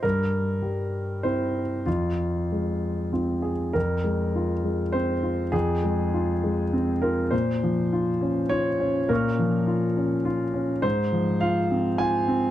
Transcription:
0.03 G2 A#4
0.62 G3
1.23 C4 E4 C5
1.86 F2 F4
2.52 G#3
3.13 C4 F4
3.42 G#4
3.73 F2 A#4
4.04 G#3
4.36 F4
4.64 G#3
4.92 C4 C5
5.23 F4
5.52 F2 G#4
5.84 G#3
6.14 F4
6.44 G#3
6.73 C4
7.02 F4 A#4
7.31 A#2 C5
7.63 F3
7.93 F4
8.21 C#4
8.49 F4 C#5
8.80 C#4
9.09 A#2 A#4 F5
9.13 C#6 F6
9.39 F3
9.67 F4
9.97 C#4
10.25 F4
10.54 C#4
10.82 G#2 C5
11.12 F3
11.40 F4 F5
11.71 C4
11.98 F4 G#5
12.28 C4

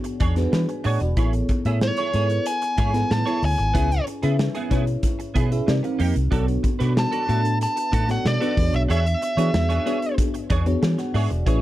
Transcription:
Already playing: B3 D4 F#4 G#4 C#5
0.04 muted clean electric guitar stroke, closed hi-hat
0.20 E2 D4 G#4 C#5, kick, closed hi-hat
0.36 B3 D4 F#4 G#4 B4, muted clean electric guitar stroke, snare, closed hi-hat
0.52 E3 B5, muted clean electric guitar stroke, snare
0.69 B4 G#5, muted clean electric guitar stroke, closed hi-hat
0.84 A2 D4 G#4 C#5 F#5, open hi-hat
1.00 E1 F#4 D5, muted clean electric guitar stroke, closed hi-hat
1.17 A1 B3 E4 G#4 A4 C#5, kick, closed hi-hat
1.33 muted clean electric guitar stroke, closed hi-hat
1.49 muted clean electric guitar stroke, kick, closed hi-hat
1.65 A2 B3 E4 G#4 A4 C#5 E5, closed hi-hat
1.81 C#5, muted clean electric guitar stroke, snare
1.97 E4 G#4 C#5, closed hi-hat
2.13 G#2 B3 E4 G#4 A4 B4 C#5, closed hi-hat
2.21 C#5
2.30 closed hi-hat
2.46 G#5, closed hi-hat
2.62 muted clean electric guitar stroke, closed hi-hat
2.78 G#2 E4 G#4 C#5, kick, closed hi-hat
2.93 B3 E4 G#4 A4 B4, muted clean electric guitar stroke, snare, closed hi-hat
3.10 A2 A5, muted clean electric guitar stroke, snare
3.26 B3 E4 G#4 A4 C#5, closed hi-hat
3.42 D2 G#5, muted clean electric guitar stroke, open hi-hat
3.58 G#1, muted clean electric guitar stroke, closed hi-hat
3.74 C#2 B3 C#4 E4 G#4 B4 C#5, kick, closed hi-hat
3.90 muted clean electric guitar stroke, closed hi-hat
4.06 muted clean electric guitar stroke, closed hi-hat
4.22 C#3 B3 C#4 E4 G#4 B4 E5, closed hi-hat
4.39 muted clean electric guitar stroke, snare
4.55 B3 E4 G#4, closed hi-hat
4.70 B2 B3 C#4 E4 G#4 B4 C#5, kick, snare, closed hi-hat
4.87 closed hi-hat
5.03 kick, closed hi-hat
5.19 muted clean electric guitar stroke, closed hi-hat
5.34 B2 B3 E4 G#4, kick, closed hi-hat
5.51 C#4 E4 G#4 B4 E5, muted clean electric guitar stroke, closed hi-hat
5.67 C3 C4 D#4 G4 A#4 D5, muted clean electric guitar stroke, snare
5.83 C4 D#4 G4 A#4 F5, muted clean electric guitar stroke, closed hi-hat
5.99 F2 A#3 D#4 G4, open hi-hat
6.15 C2, muted clean electric guitar stroke, closed hi-hat
6.31 B1 B3 D4 F#4 A4 C#5, kick, closed hi-hat
6.47 muted clean electric guitar stroke, closed hi-hat
6.63 muted clean electric guitar stroke, kick, closed hi-hat
6.79 B2 B3 D4 F#4 A4 B4, snare, closed hi-hat
6.97 A5, snare
7.11 D4 F#4 A4, closed hi-hat
7.28 A2 B3 D4 F#4 A4 E5, closed hi-hat
7.45 muted clean electric guitar stroke, closed hi-hat
7.61 A5, closed hi-hat
7.76 muted clean electric guitar stroke, closed hi-hat
7.92 A2 D4 F#4 A4, kick, closed hi-hat
8.08 B3 D4 F#4 A4 C#5 F#5, muted clean electric guitar stroke, snare, closed hi-hat
8.25 B2 D5, muted clean electric guitar stroke, snare
8.40 B3 D4 F#4 A4 B4, snare, closed hi-hat
8.57 E2 B3 D4 F#4 G#4 B4, muted clean electric guitar stroke, kick, open hi-hat
8.64 C#5
8.73 B1 E5, muted clean electric guitar stroke, closed hi-hat
8.88 E2 D4 G#4 C#5 E5, closed hi-hat
9.05 muted clean electric guitar stroke, closed hi-hat
9.21 muted clean electric guitar stroke, closed hi-hat
9.37 E3 B3 D4 F#4 G#4 B4 C#5, closed hi-hat
9.53 E2, muted clean electric guitar stroke, snare
9.69 D4 G#4 C#5, closed hi-hat
9.85 B3 D4 F#4 G#4 C#5, closed hi-hat
10.02 muted clean electric guitar stroke, closed hi-hat
10.18 kick, closed hi-hat
10.34 muted clean electric guitar stroke, closed hi-hat
10.50 E2 D4 G#4 C#5, kick, closed hi-hat
10.65 B3 D4 F#4 G#4 C#5, muted clean electric guitar stroke, closed hi-hat
10.82 E3 B4 G#5, muted clean electric guitar stroke, snare
10.98 F#5, muted clean electric guitar stroke, snare, closed hi-hat
11.14 G#2 D4 G#4 C#5 E5, open hi-hat
11.31 E1 F#4 D5, muted clean electric guitar stroke, closed hi-hat
11.46 A1 A3 C#4 E4 G#4 B4 C#5, kick, closed hi-hat

